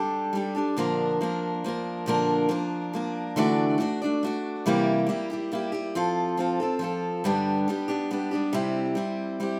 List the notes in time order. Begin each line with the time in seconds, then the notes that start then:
Already playing: G3 D4 G4 A4
0.33 G3 D4 G4
0.37 A4
0.55 G3 D4 G4 A4
0.77 A#2 D3 F3 A#3 D4 A#4
1.21 F3 A#3 D4 A#4
1.64 F3 A#3 D4
1.68 A#4
2.06 A#2 D3 F3 A#3 D4 A#4
2.49 F3 A#3 D4 A#4
2.93 F3 A#3 D4 A#4
3.36 D3 E3 A3 D4 F#4 D5
3.78 A3 D4 F#4 D5
4.02 A3 D4 F#4 D5
4.23 A3 D4 F#4 D5
4.66 C3 E3 G3 A#3 E4 G4
5.07 G3 A#3 E4 G4
5.30 G3 A#3 E4 G4
5.52 G3 A#3 E4 G4
5.72 G3 A#3 E4 G4
5.95 F3 C4 F4 A4
6.37 F3 C4 F4 A4
6.60 C4 F4 A4
6.79 F3 C4 F4
6.84 A4
7.24 G2 D3 G3 B3 D4 G4
7.68 G3 B3 D4 G4
7.88 G3 B3 D4 G4
8.11 G3 B3 D4 G4
8.31 G3 B3 D4 G4
8.53 C3 G3 C4 E4 G4
8.95 G3 C4 E4 G4
9.40 G3 C4 E4 G4